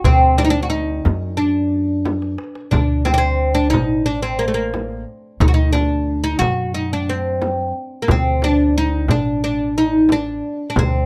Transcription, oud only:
0.05 0.38 C4 medium
0.38 0.44 D4 loud
0.45 0.50 D#4 medium
0.50 0.62 D4 loud
0.63 0.69 F#4 medium
0.70 1.37 D#4 medium
1.37 2.34 D4 medium
2.71 3.05 D4 medium
3.05 3.13 C4 medium
3.14 3.17 D4 medium
3.18 3.54 C4 medium
3.55 3.70 D4 medium
3.70 4.05 D#4 medium
4.06 4.22 D4 medium
4.22 4.40 C4 medium
4.39 4.46 A#3 medium
4.48 4.54 A3 medium
4.54 5.03 A#3 medium
5.41 5.47 D#4 medium
5.48 5.53 F#4 medium
5.54 5.72 D#4 medium
5.73 6.23 D4 medium
6.24 6.38 D#4 medium
6.39 6.74 F#4 loud
6.74 6.92 D#4 medium
6.93 7.09 D4 medium
7.09 7.72 C4 medium
8.02 8.09 A#3 medium
8.11 8.44 C4 medium
8.44 8.77 D4 loud
8.78 9.10 D#4 loud
9.11 9.43 D4 medium
9.44 9.75 D4 medium
9.78 10.11 D#4 medium
10.12 10.69 D4 medium
10.70 10.77 D4 medium
10.79 11.06 C4 medium

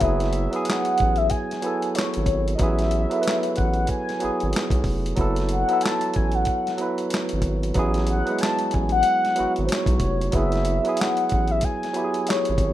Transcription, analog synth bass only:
0.02 0.48 F#1 loud
1.02 1.29 A1 medium
2.17 2.27 G#1 medium
2.27 2.56 G#1 medium
2.61 3.06 A1 loud
3.60 3.87 A1 medium
4.24 4.31 G#1 soft
4.43 4.53 G#1 medium
4.72 4.83 B1 medium
4.85 5.14 F1 medium
5.19 5.64 F#1 loud
6.18 6.45 A1 medium
7.33 7.43 G#1 medium
7.43 7.72 G#1 medium
7.77 8.22 A1 loud
8.75 9.03 A1 medium
9.40 9.47 G#1 soft
9.59 9.69 G#1 medium
9.88 10.00 B1 medium
10.01 10.30 F1 medium
10.34 10.80 F#1 loud
11.33 11.61 A1 medium
12.49 12.59 G#1 medium
12.59 12.73 G#1 medium

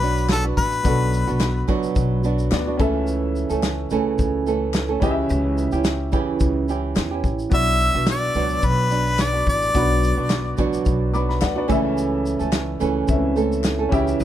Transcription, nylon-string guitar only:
0.02 0.45 F#3 medium
0.02 0.45 B3 medium
0.02 0.44 D4 medium
0.02 0.43 F#4 medium
0.44 0.84 B3 soft
0.44 0.84 D4 soft
0.44 0.85 F#4 medium
0.84 1.28 F#3 medium
0.84 1.28 B3 medium
0.84 1.27 D4 medium
0.84 1.26 F#4 medium
1.27 1.67 B3 medium
1.27 1.67 D4 medium
1.27 1.68 F#4 medium
1.68 2.24 B2 medium
1.68 2.23 F#3 medium
1.68 2.23 B3 medium
1.68 2.24 D4 medium
1.68 2.24 F#4 loud
2.24 2.67 F#3 medium
2.24 2.67 B3 medium
2.24 2.67 D4 medium
2.24 2.66 F#4 medium
2.67 2.80 B3 soft
2.67 2.80 D4 medium
2.67 2.80 F#4 medium
2.79 3.50 C#3 medium
2.79 3.91 E3 medium
2.79 3.51 A3 medium
2.79 3.50 C#4 medium
2.79 3.48 A4 loud
3.50 3.90 A3 soft
3.50 3.91 C#4 medium
3.50 3.90 A4 medium
3.91 4.46 C#3 medium
3.91 4.46 E3 medium
3.91 4.46 A3 medium
3.91 4.47 C#4 medium
3.91 4.47 A4 medium
4.46 4.90 E3 medium
4.46 4.90 A3 medium
4.46 4.89 C#4 medium
4.46 4.88 A4 medium
4.89 5.02 A3 medium
4.89 5.01 C#4 medium
4.89 5.02 A4 medium
5.01 5.73 C#3 medium
5.01 5.73 E3 medium
5.01 5.73 C#4 loud
5.01 5.72 E4 medium
5.01 5.71 G4 loud
5.72 6.11 C#4 medium
5.72 6.12 E4 medium
5.72 6.12 G4 medium
6.12 6.68 C#3 medium
6.12 6.67 E3 medium
6.12 6.68 C#4 medium
6.12 6.69 E4 medium
6.12 6.69 G4 medium
6.69 7.12 E3 medium
6.69 7.11 C#4 medium
6.69 7.11 E4 medium
6.69 7.10 G4 medium
7.11 7.52 C#4 medium
7.11 7.53 E4 medium
7.11 7.52 G4 medium
7.52 7.95 F#3 medium
7.52 7.96 B3 medium
7.52 7.94 D4 medium
7.52 7.93 F#4 medium
7.94 8.34 B3 soft
7.94 8.35 D4 medium
7.94 8.35 F#4 medium
8.35 8.91 B2 medium
8.35 8.89 F#3 medium
8.35 8.90 B3 medium
8.35 8.90 D4 medium
8.35 8.91 F#4 medium
8.90 9.34 F#3 medium
8.90 9.34 B3 medium
8.90 9.33 D4 medium
8.90 9.32 F#4 medium
9.33 9.74 B3 soft
9.33 9.74 D4 medium
9.33 9.74 F#4 medium
9.74 10.18 F#3 medium
9.74 10.18 B3 medium
9.74 10.17 D4 medium
9.74 10.16 F#4 medium
10.17 10.57 B3 medium
10.17 10.58 D4 medium
10.17 10.58 F#4 medium
10.58 11.14 B2 medium
10.58 11.12 F#3 medium
10.58 11.13 B3 medium
10.58 11.13 D4 medium
10.58 11.14 F#4 loud
11.13 11.57 F#3 medium
11.13 11.57 B3 medium
11.13 11.55 D4 medium
11.13 11.55 F#4 medium
11.56 11.68 B3 medium
11.56 11.68 D4 medium
11.56 11.69 F#4 medium
11.68 12.40 C#3 medium
11.68 12.80 E3 medium
11.68 12.40 A3 medium
11.68 12.40 C#4 medium
11.68 12.38 A4 loud
12.39 12.79 A3 medium
12.39 12.80 C#4 medium
12.39 12.80 A4 medium
12.80 13.36 C#3 medium
12.80 13.35 E3 medium
12.80 13.35 A3 medium
12.80 13.37 C#4 medium
12.80 13.36 A4 medium
13.36 13.79 E3 medium
13.36 13.79 A3 medium
13.36 13.79 C#4 medium
13.36 13.78 A4 medium
13.79 13.92 A3 soft
13.79 13.91 C#4 medium
13.79 13.92 A4 medium
13.92 14.24 C#3 medium
13.92 14.24 E3 medium
13.92 14.24 C#4 medium
13.92 14.24 E4 loud
13.92 14.24 G4 loud

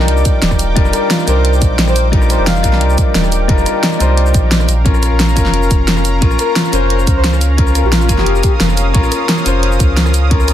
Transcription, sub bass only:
0.00 0.24 C2 loud
0.43 0.75 D#1 loud
0.77 0.92 F1 loud
1.28 1.61 C2 medium
1.62 2.37 A#1 medium
2.39 2.66 F1 loud
2.64 2.97 C2 loud
3.15 3.48 D#1 loud
3.49 3.65 F1 loud
4.00 4.33 C2 loud
4.35 4.67 A#1 loud
4.69 5.10 A#1 loud
5.12 5.38 A#1 medium
5.37 5.70 F1 medium
5.71 6.21 F1 medium
6.22 6.37 A#1 loud
6.73 7.06 F1 medium
7.07 7.83 C#2 medium
7.84 8.11 A#1 loud
8.10 8.42 F1 loud
8.61 8.93 F1 loud
8.95 9.10 A#1 loud
9.46 9.79 F1 loud
9.80 10.53 C#2 medium

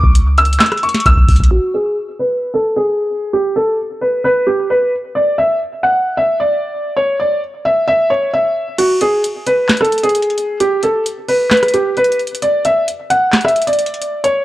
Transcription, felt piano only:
0.00 0.12 D6 medium
0.38 0.58 E6 medium
0.60 0.80 E6 loud
0.83 1.03 C#6 medium
1.06 1.49 E6 medium
1.51 1.71 F#4 medium
1.74 1.94 G#4 medium
2.19 2.51 B4 medium
2.54 2.74 A4 medium
2.76 3.30 G#4 medium
3.33 3.53 G4 medium
3.56 3.76 A4 medium
4.01 4.21 B4 medium
4.24 4.44 B4 medium
4.47 4.67 G4 medium
4.70 4.90 B4 medium
5.15 5.35 D5 medium
5.38 5.58 E5 medium
5.83 6.15 F#5 medium
6.17 6.37 E5 medium
6.40 6.93 D5 medium
6.96 7.17 C#5 medium
7.20 7.40 D5 medium
7.65 7.85 E5 medium
7.88 8.08 E5 medium
8.10 8.30 C#5 medium
8.33 8.76 E5 medium
8.78 8.98 F#4 medium
9.01 9.21 G#4 medium
9.47 9.79 B4 medium
9.81 10.01 A4 medium
10.03 10.57 G#4 medium
10.60 10.80 G4 medium
10.83 11.03 A4 medium
11.28 11.48 B4 medium
11.51 11.71 B4 loud
11.74 11.94 G4 medium
11.97 12.17 B4 medium
12.42 12.62 D5 medium
12.65 12.85 E5 medium
13.10 13.42 F#5 medium
13.45 13.64 E5 medium
13.67 14.20 D5 medium
14.24 14.44 C#5 medium

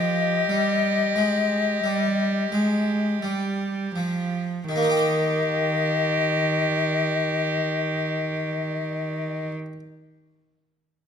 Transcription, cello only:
0.00 0.48 F3 medium
0.49 1.16 G3 medium
1.15 1.83 G#3 medium
1.83 2.51 G3 medium
2.52 3.21 G#3 medium
3.23 3.94 G3 medium
3.95 4.67 F3 medium
4.69 9.52 D#3 medium

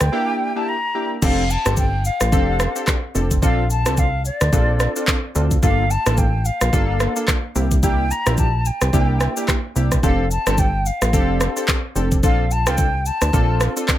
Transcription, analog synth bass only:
0.01 0.10 D2 medium
1.22 1.57 F1 loud
1.66 2.10 G1 medium
2.21 2.34 A1 medium
2.32 2.67 F1 loud
3.15 3.44 F1 medium
3.43 3.88 A#1 loud
3.86 4.30 C2 medium
4.41 4.50 D2 medium
4.53 4.88 A#1 loud
5.35 5.57 D2 medium
5.63 5.98 G1 loud
6.06 6.50 A1 loud
6.61 6.71 A#1 loud
6.73 7.08 G1 loud
7.56 8.13 C2 medium
8.27 8.71 A#1 loud
8.82 8.91 C2 loud
8.93 9.28 C2 loud
9.76 9.98 C2 medium
10.03 10.38 F1 loud
10.47 10.91 G1 loud
11.02 11.15 A1 medium
11.13 11.48 F1 loud
11.96 12.25 F1 medium
12.23 12.68 A#1 loud
12.67 13.11 C2 medium
13.22 13.31 D2 medium
13.33 13.68 A#1 loud

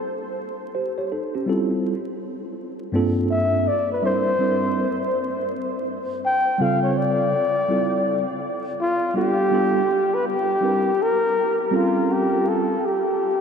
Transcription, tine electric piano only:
0.75 0.97 G4 medium
0.75 0.96 C5 medium
0.98 1.11 G4 medium
0.98 1.10 C#5 medium
1.12 1.34 D#4 medium
1.12 1.33 A4 medium
1.35 1.69 C#4 medium
1.35 1.69 G4 medium
1.46 1.93 G3 medium
1.46 1.93 C4 medium
1.46 1.94 E4 medium
1.46 1.94 F4 medium
1.46 1.94 A4 medium
2.92 3.66 G2 medium
2.92 3.67 A#3 medium
2.92 3.67 C4 medium
2.92 3.67 D4 medium
2.92 3.68 F4 medium
2.92 3.68 A4 loud
4.02 4.31 G3 medium
4.02 4.32 C4 medium
4.02 4.32 D4 medium
4.02 4.33 E4 medium
4.02 4.33 A#4 medium
4.39 4.85 G3 medium
4.39 4.86 C4 medium
4.39 4.86 D4 medium
4.39 4.87 E4 medium
4.39 4.87 A#4 medium
6.58 7.33 C#3 medium
6.58 7.32 G3 medium
6.58 7.33 C4 medium
6.58 7.34 F4 medium
6.58 7.34 A4 medium
7.68 8.24 G3 medium
7.68 8.24 C4 medium
7.68 8.25 E4 medium
7.68 8.25 F4 medium
7.68 8.26 A4 medium
9.14 9.50 G3 medium
9.14 9.51 B3 medium
9.14 9.51 D4 medium
9.14 9.52 F4 medium
9.14 9.53 A4 medium
9.51 9.80 G3 medium
9.51 9.81 B3 medium
9.51 9.81 D4 medium
9.51 9.81 F4 medium
9.51 9.82 A4 medium
10.60 10.90 G3 medium
10.60 10.90 C4 medium
10.60 10.91 D4 medium
10.60 10.91 E4 soft
10.60 10.91 A#4 medium
11.71 12.76 G3 medium
11.71 12.76 C4 medium
11.71 12.76 C#4 medium
11.71 12.77 F4 medium
11.71 12.77 A4 medium

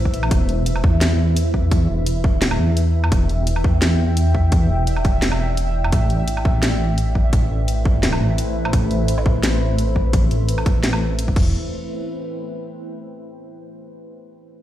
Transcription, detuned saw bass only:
0.00 0.12 A1 loud
0.14 0.30 A1 loud
0.31 0.82 E1 loud
0.84 1.88 E2 loud
1.89 2.38 E1 medium
2.38 2.58 D#1 medium
2.59 3.11 E2 loud
3.12 3.63 E1 loud
3.64 4.68 E2 loud
4.70 5.21 E1 medium
5.22 5.91 E1 loud
5.93 6.44 A1 loud
6.45 7.49 A1 medium
7.50 8.19 A1 medium
8.21 8.72 A1 loud
8.73 9.25 A1 loud
9.26 10.30 A1 loud
10.31 11.35 A1 loud
11.36 11.53 E1 medium

